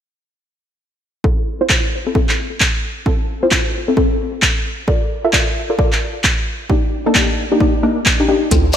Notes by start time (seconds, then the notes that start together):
1.24 C4 E4 F4 A4, kick
1.61 C4 E4 F4 C5
1.69 C4 A4, kick, clap
2.06 C4 E4 F4 A4
2.15 C4 E4 F4 A4, kick
2.29 clap
2.60 kick, clap
3.06 C4 E4 F4 A4, kick
3.43 C4 E4 F4 C5
3.51 C4 E4 A4, kick, clap
3.88 C4 E4 F4 A4
3.97 C4 E4 F4 A4, kick
4.42 kick, clap
4.88 F4 A4 A#4 D5, kick
5.24 F4 A4 A#4 E5
5.33 F4 A4 A#4 D5, kick, clap
5.70 F4 A4 A#4 D5
5.79 F4 A4 A#4 D5, kick
5.92 clap
6.24 kick, clap
6.70 A#3 D4 D#4 G4, kick
7.06 A#3 D4 D#4 A4
7.15 A#3 D4 D#4 G4, kick, clap
7.52 A#3 D4 D#4 G4
7.60 A#3 D4 D#4 G4, kick
7.83 A#3 D4 D#4 A#4
8.06 kick, clap
8.20 A#3 D4 D#4 G4
8.29 A#3 D4 D#4 G4
8.51 D2 C4 E4 F4 A4, kick, closed hi-hat, shekere
8.73 shekere